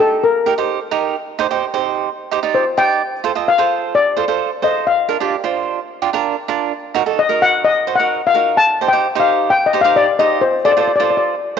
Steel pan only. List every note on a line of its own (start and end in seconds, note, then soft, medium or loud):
0.00 0.24 A4 medium
0.24 1.35 A#4 medium
2.55 2.76 C5 medium
2.78 3.50 G5 loud
3.48 3.96 F5 medium
3.95 4.66 D5 medium
4.64 4.88 D#5 medium
4.87 5.99 F5 medium
7.19 7.43 D#5 medium
7.42 7.66 F#5 loud
7.65 7.96 D#5 loud
7.96 8.24 F#5 medium
8.27 8.58 F5 medium
8.57 8.89 A5 loud
8.88 9.17 G5 loud
9.20 9.48 F5 medium
9.50 9.66 G5 loud
9.66 9.82 D#5 medium
9.81 9.95 F5 medium
9.96 10.20 D5 medium
10.19 10.43 D#5 medium
10.41 10.63 C5 medium
10.65 10.71 D5 medium
10.72 10.79 D5 medium
10.80 10.86 D5 medium
10.88 10.95 D5 medium
10.96 11.02 D5 medium
11.04 11.09 D5 medium
11.10 11.16 D5 medium
11.17 11.25 D5 medium